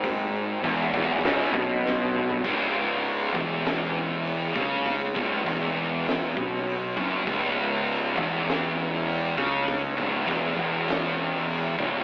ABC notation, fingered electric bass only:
X:1
M:4/4
L:1/8
Q:1/4=100
K:C#m
V:1 name="Fingered electric bass" clef=bass
G,,,2 E,,, E,,, C,,, B,,,3 | C,,,3 E,,,4 C,,- | C,, C,,, E,,,3 B,,,2 F,,, | C,,,3 E,,,4 C,,- |
C,, C,,, E,,, E,,,4 C,,, |]